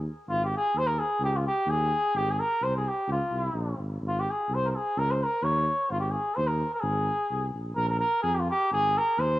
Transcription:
0.28 G#1 F4
0.44 G4
0.57 G#4
0.74 D#2 C5
0.87 A#4
0.99 G#4
1.20 C#2 G4
1.36 F4
1.47 G4
1.66 D#2 G#4
2.13 G#1 G4
2.30 G#4
2.39 A#4
2.61 C2 C5
2.77 G#4
2.88 G4
3.08 C#2 F4
3.31 C2
3.54 A#1
3.78 G#1
4.01 G#1
4.08 F4
4.20 G4
4.30 G#4
4.49 C2
4.54 C5
4.65 A#4 C5
4.71 A#4
4.76 G#4
4.97 C#2 A#4
5.11 C5
5.24 A#4
5.42 D#2 C#5
5.90 G#1 F4
6.00 G4
6.11 G#4
6.36 D#2 C5
6.47 A#4
6.74 A#4
6.80 G#1 G#4
7.31 C2
7.54 A#1
7.75 A#1 A#4
7.89 A#4
8.00 A#4
8.22 F2 G#4
8.34 G4
8.39 F4
8.51 G4
8.71 G#1 G#4
8.98 A#4
9.18 D#2 C5

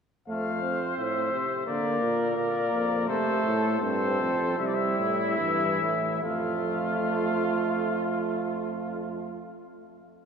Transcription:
0.28 F2 A3 C5 F5
0.63 C4
0.97 A2 E5
1.32 C3
1.67 D3 A#3 A#4 D5
2.02 A#2
2.36 A#2 A#3 D5
2.72 F2
3.08 C3 A3 A4 C5
3.44 A2
3.82 G2 C4 A4 C5
4.20 F2
4.58 C3 G3 E4 E5
4.66 D5
4.75 E5
4.98 A2
5.39 G2 E3
5.81 A2
6.23 F2 A3 F4 F5

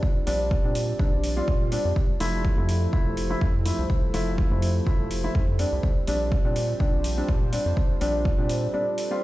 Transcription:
Already playing: G3 C4 D4 F4 G4
0.03 D5, kick
0.27 A#1 G3 C4 D4, open hi-hat
0.51 kick
0.64 A#2 G3 C4 D4
0.75 open hi-hat
0.99 G3 C4 D4, kick
1.12 A#1
1.24 open hi-hat
1.36 G3 C4 F4
1.48 A#2, kick
1.72 G3 C4 D4, open hi-hat
1.85 F2
1.96 E4 A4 C5, kick
2.20 F1 F3 A3 E4, open hi-hat
2.45 kick
2.57 F2 F3 A3 E4
2.69 open hi-hat
2.93 F3 A3 E4, kick
3.06 F1
3.17 open hi-hat
3.30 F3 A3 E4
3.41 F2, kick
3.65 F3 A3 E4, open hi-hat
3.79 C2
3.90 kick
4.14 F1 F3 A3 E4, open hi-hat
4.38 kick
4.51 F2 F3 A3 E4
4.62 open hi-hat
4.86 F3 A3 E4, kick
5.00 F1
5.11 open hi-hat
5.24 F3 A3 E4
5.35 F2, kick
5.59 G3 C4 D4, open hi-hat
5.72 C2
5.83 D4 F4 G4 C5, kick
6.07 A#1 G3 C4 D4, open hi-hat
6.32 kick
6.45 A#2 G3 C4 D4
6.56 open hi-hat
6.80 G3 C4 D4, kick
6.93 A#1
7.04 open hi-hat
7.17 G3 C4 D4
7.29 A#2, kick
7.52 G3 C4 D4, open hi-hat
7.66 F2
7.77 A4, kick
8.01 A#1 G3 C4 D4, open hi-hat
8.25 kick
8.38 A#2 G3 C4 D4
8.49 open hi-hat
8.73 G3 C4 D4
8.98 open hi-hat
9.11 G3 C4 F4

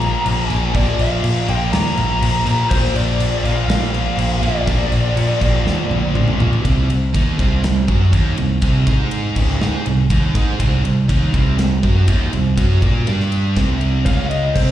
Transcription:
Already playing: A#2 F3 A#3 A#5
0.01 crash
0.25 A#1 A#2 F3 A#3, crash
0.48 A#1 F3 A#3 G#5, crash
0.54 A#2
0.73 A#1 A#2 F3 A#3 D5, kick, crash
0.77 A#3
0.99 A#1 F5, crash
1.23 A#2, crash
1.48 A#1 A#2 F3 A#3 G5, crash
1.72 D#2 A#5, snare, crash
1.86 snare
1.97 A#1, crash
2.21 A#1 A#2 F3 A#3, crash
2.46 A#2 F3 A#3, crash
2.70 A#1 A#2 F3 A#3 C5, kick, crash
2.95 A#1 D5, crash
3.19 A#1, crash
3.43 A#1 A#2 F3 A#3 F5, crash
3.47 A#2
3.68 A#1 F5, snare, crash
3.83 snare
3.94 crash
4.16 A#1 A#2 F3 A#3, crash
4.42 A#1 A#2 F3 A#3 D5, crash
4.66 A#1 A#2 F3 A#3, kick, crash
4.70 A#3
4.92 A#1, crash
5.16 A#2, crash
5.40 A#1 A#2 F3 A#3, kick, crash
5.66 D#2, snare
5.91 A#1, high tom
6.14 A#1 A#2 F3 A#3, mid tom
6.28 mid tom
6.40 A#2 F3 A#3, floor tom
6.53 floor tom
6.65 C2 C3 G3 C4, kick, ride
6.90 C2 C3 G3, ride
7.13 D#2 D#3 A#3 D#4, kick, ride
7.39 C2 C3 G3 C4, kick, ride
7.64 C2 C3 G3, snare, ride
7.87 F#2 F#3 C#4 F#4, kick, ride
8.12 D#2 D#3 A#3 D#4, kick, ride
8.37 C2 C3 G3, ride
8.61 C2 C3 G3 C4, kick, ride
8.86 G#2 G#3 D#4 G#4, kick, ride
9.11 ride
9.36 C#2 C#3 G#3 C#4, kick, crash
9.60 G#2 G#3 D#4 G#4, snare
9.86 C2 C3 G3, ride
10.10 D#2 D#3 A#3 D#4, kick, ride
10.35 G#2 G#3 D#4 G#4, kick, ride
10.59 C2 C3 G3 C4, kick, ride
10.84 C2 C3 G3, ride
11.08 D#2 D#3 A#3 D#4, kick, ride
11.33 C2 C3 G3 C4, kick, ride
11.58 C2 C3 G3, snare, ride
11.83 F#2 F#3 C#4 F#4, kick, ride
12.08 D#2 D#3 A#3 D#4, kick, ride
12.33 C2 C3 G3, ride
12.57 F#2 F#3 C#4 F#4, kick, ride
12.82 A#2 A#3 F4 A#4, kick, ride
13.07 G2 G3 D4 G4, ride
13.20 snare
13.32 ride
13.56 C2 C3 G3 C4, kick, snare, ride
13.81 ride
14.06 C#2 C#3 G#3 C#4 F5, kick, ride
14.30 D#5, ride
14.54 C2 C3 G3 C4 C5, kick, crash

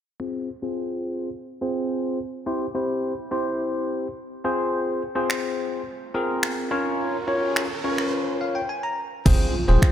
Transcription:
0.20 C4 F4 G#4 C5
0.62 C4 F4 G#4 C5
1.61 C4 F4 G#4 C5
2.46 C4 E4 G4 C5
2.75 C4 E4 G4 C5
3.31 C4 E4 G4 C5
4.44 C4 F4 G#4 C5
4.73 riser
5.15 C4 F4 G#4 C5
5.30 finger snap
6.14 C4 F4 G#4 A#4
6.43 finger snap
6.71 C#4 F4 A#4 C#5
7.27 C#4 F4 A#4 C#5
7.56 finger snap
7.84 C#4 F4 A#4 C#5
7.98 finger snap
8.41 F5
8.55 G5
8.69 G#5
8.83 A#5
9.25 F1 C3 F3 G#3 C4 F4 G#4 C5, kick, crash, impact
9.68 D#1 C4 F4 G#4 C5
9.82 finger snap, kick

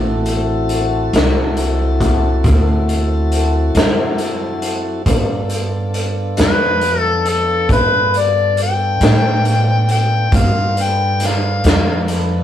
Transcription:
Already playing: A1 C4 E4 F#4 A4
0.26 closed hi-hat
0.69 closed hi-hat
1.13 C2, snare, closed hi-hat
1.57 closed hi-hat
2.01 kick, closed hi-hat
2.44 D2, kick, closed hi-hat
2.89 closed hi-hat
3.32 closed hi-hat
3.75 F#2, snare, closed hi-hat
4.18 closed hi-hat
4.62 closed hi-hat
5.06 G2 B3 D4 F4 A4, kick, closed hi-hat
5.50 closed hi-hat
5.94 closed hi-hat
6.37 F2, snare, closed hi-hat
6.42 B4
6.81 closed hi-hat
7.00 A4
7.25 A4, closed hi-hat
7.69 G2 B4, kick, closed hi-hat
8.14 D5, closed hi-hat
8.57 closed hi-hat
8.63 G5
9.00 A2, snare, closed hi-hat
9.45 closed hi-hat
9.89 G5, closed hi-hat
10.31 G2 D#4 F#4 A#4 C5, kick, closed hi-hat
10.36 F5
10.75 D4 F4 A4 B4, closed hi-hat
10.82 G5
11.20 snare, closed hi-hat
11.26 F5
11.64 F2, snare, closed hi-hat
12.08 closed hi-hat

